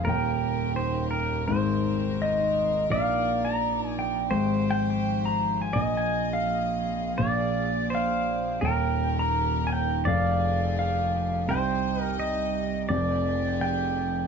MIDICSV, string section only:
0, 0, Header, 1, 2, 480
1, 0, Start_track
1, 0, Key_signature, -3, "major"
1, 0, Tempo, 709220
1, 40, Time_signature, 4, 2, 24, 8
1, 2920, Tempo, 715137
1, 9603, End_track
2, 0, Start_track
2, 0, Title_t, "String section"
2, 0, Program_c, 0, 48
2, 28, Note_on_c, 0, 67, 65
2, 31, Note_on_c, 0, 39, 66
2, 32, Note_on_c, 0, 51, 67
2, 34, Note_on_c, 0, 70, 81
2, 979, Note_off_c, 0, 51, 0
2, 984, Note_off_c, 0, 67, 0
2, 986, Note_off_c, 0, 39, 0
2, 987, Note_on_c, 0, 51, 71
2, 988, Note_on_c, 0, 60, 65
2, 991, Note_on_c, 0, 44, 72
2, 1942, Note_off_c, 0, 51, 0
2, 1942, Note_off_c, 0, 60, 0
2, 1943, Note_off_c, 0, 44, 0
2, 1954, Note_on_c, 0, 46, 72
2, 1961, Note_on_c, 0, 53, 62
2, 1963, Note_on_c, 0, 63, 66
2, 2888, Note_off_c, 0, 70, 0
2, 2907, Note_off_c, 0, 46, 0
2, 2912, Note_off_c, 0, 63, 0
2, 2917, Note_on_c, 0, 67, 68
2, 2918, Note_on_c, 0, 44, 70
2, 2920, Note_on_c, 0, 72, 83
2, 3869, Note_off_c, 0, 67, 0
2, 3870, Note_off_c, 0, 44, 0
2, 3871, Note_off_c, 0, 72, 0
2, 3885, Note_on_c, 0, 68, 61
2, 3889, Note_on_c, 0, 75, 73
2, 3894, Note_on_c, 0, 46, 74
2, 4835, Note_off_c, 0, 75, 0
2, 4844, Note_on_c, 0, 74, 83
2, 5783, Note_off_c, 0, 53, 0
2, 5791, Note_off_c, 0, 68, 0
2, 5796, Note_off_c, 0, 46, 0
2, 5801, Note_off_c, 0, 74, 0
2, 5819, Note_on_c, 0, 51, 62
2, 5819, Note_on_c, 0, 67, 62
2, 5820, Note_on_c, 0, 39, 65
2, 5820, Note_on_c, 0, 70, 76
2, 6767, Note_off_c, 0, 51, 0
2, 6767, Note_off_c, 0, 67, 0
2, 6768, Note_off_c, 0, 39, 0
2, 6768, Note_off_c, 0, 70, 0
2, 6775, Note_on_c, 0, 67, 65
2, 6776, Note_on_c, 0, 53, 63
2, 6777, Note_on_c, 0, 41, 74
2, 6777, Note_on_c, 0, 68, 80
2, 7722, Note_off_c, 0, 67, 0
2, 7723, Note_off_c, 0, 41, 0
2, 7723, Note_off_c, 0, 53, 0
2, 7723, Note_off_c, 0, 68, 0
2, 7738, Note_on_c, 0, 75, 84
2, 7745, Note_on_c, 0, 55, 63
2, 7746, Note_on_c, 0, 48, 72
2, 7747, Note_on_c, 0, 63, 71
2, 8678, Note_off_c, 0, 75, 0
2, 8681, Note_off_c, 0, 55, 0
2, 8682, Note_off_c, 0, 48, 0
2, 8682, Note_off_c, 0, 63, 0
2, 8692, Note_on_c, 0, 67, 69
2, 8692, Note_on_c, 0, 68, 78
2, 8693, Note_on_c, 0, 41, 69
2, 8694, Note_on_c, 0, 53, 69
2, 9603, Note_off_c, 0, 41, 0
2, 9603, Note_off_c, 0, 53, 0
2, 9603, Note_off_c, 0, 67, 0
2, 9603, Note_off_c, 0, 68, 0
2, 9603, End_track
0, 0, End_of_file